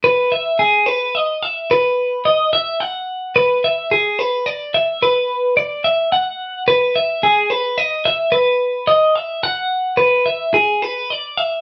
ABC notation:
X:1
M:6/8
L:1/8
Q:3/8=72
K:E
V:1 name="Clean electric guitar"
B e G B d e | B2 d e f2 | B e G B =d e | B2 =d e f2 |
B e G B d e | B2 d e f2 | B e G B =d e |]